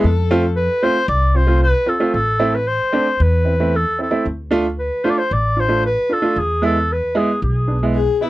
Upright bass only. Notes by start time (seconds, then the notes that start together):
0.04 F2
1.08 C2
2.14 A1
3.20 E2
4.26 D2
5.31 A1
6.36 E2
7.42 B1